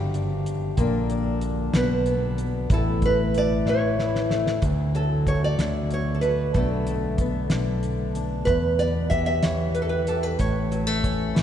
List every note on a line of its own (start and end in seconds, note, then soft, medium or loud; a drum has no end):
0.00 0.74 G1 medium
0.00 0.74 G2 medium
0.00 0.78 D3 medium
0.00 0.74 G4 medium
0.14 0.75 D4 medium
0.14 closed hi-hat soft
0.46 closed hi-hat medium
0.77 1.70 A#1 medium
0.77 1.70 A#2 medium
0.77 3.66 D3 medium
0.77 1.71 A#3 medium
0.77 1.10 D4 medium
0.77 kick medium
0.77 closed hi-hat medium
1.10 1.75 D4 medium
1.10 closed hi-hat soft
1.41 closed hi-hat soft
1.74 2.66 B1 medium
1.74 2.67 B2 medium
1.74 2.71 D4 medium
1.74 2.74 B4 medium
1.74 snare medium
1.74 closed hi-hat medium
2.06 2.67 B3 medium
2.06 closed hi-hat soft
2.38 closed hi-hat soft
2.70 3.62 A1 medium
2.70 4.63 A2 medium
2.70 3.98 E4 medium
2.70 3.05 A4 medium
2.70 kick medium
2.70 closed hi-hat medium
3.02 3.37 B4 medium
3.02 kick medium
3.02 closed hi-hat soft
3.34 3.69 D5 medium
3.34 closed hi-hat soft
3.66 4.58 A2 medium
3.66 4.59 E3 medium
3.66 4.36 C#5 medium
3.66 snare soft
3.99 4.59 E4 medium
3.99 snare medium
4.15 snare medium
4.30 4.59 A3 soft
4.30 snare medium
4.47 snare medium
4.62 5.55 D2 medium
4.62 6.55 D2 medium
4.62 kick medium
4.62 closed hi-hat medium
4.94 6.55 F#3 soft
4.94 5.28 A4 medium
4.94 closed hi-hat soft
5.27 6.55 A3 soft
5.27 5.44 C#5 medium
5.27 kick medium
5.27 closed hi-hat soft
5.44 5.93 D5 medium
5.59 6.51 D2 medium
5.59 6.55 D3 medium
5.59 snare medium
5.59 closed hi-hat medium
5.91 6.18 C#5 medium
5.91 closed hi-hat soft
6.15 6.22 A4 medium
6.21 6.52 F#4 medium
6.21 6.55 B4 medium
6.21 closed hi-hat soft
6.54 7.47 B1 medium
6.54 7.52 B2 medium
6.54 7.50 D3 medium
6.54 6.88 A3 medium
6.54 7.21 B3 medium
6.54 8.12 A4 medium
6.54 kick medium
6.54 closed hi-hat soft
6.59 8.15 D4 medium
6.87 8.45 A3 medium
6.87 closed hi-hat soft
7.18 8.45 B3 soft
7.18 kick medium
7.18 closed hi-hat soft
7.50 8.43 B1 medium
7.50 8.48 D3 medium
7.50 snare medium
7.50 closed hi-hat medium
7.83 closed hi-hat soft
8.15 8.48 D4 soft
8.15 closed hi-hat soft
8.45 9.39 E2 medium
8.45 10.37 E2 medium
8.45 8.76 B4 medium
8.45 kick medium
8.45 closed hi-hat medium
8.79 10.37 B3 medium
8.79 9.09 D5 medium
8.79 closed hi-hat soft
9.10 10.07 G4 medium
9.10 9.25 E5 medium
9.10 kick medium
9.10 closed hi-hat soft
9.26 9.42 E5 medium
9.42 10.36 E2 medium
9.42 10.36 E3 medium
9.42 9.75 C#5 medium
9.42 snare medium
9.42 closed hi-hat medium
9.74 9.81 B4 medium
9.74 closed hi-hat soft
9.82 9.89 A4 medium
9.89 10.08 B4 medium
10.07 10.36 G4 medium
10.07 10.23 A4 medium
10.07 closed hi-hat soft
10.23 10.40 B4 medium
10.39 11.32 A1 medium
10.39 11.43 A2 medium
10.39 11.32 C#5 medium
10.39 kick medium
10.39 closed hi-hat medium
10.71 10.87 F#3 medium
10.71 closed hi-hat soft
10.87 11.43 A3 soft
11.04 11.43 C#4 soft
11.04 kick medium
11.04 closed hi-hat soft
11.34 11.43 A1 medium
11.34 11.43 E3 medium
11.34 snare medium
11.34 closed hi-hat medium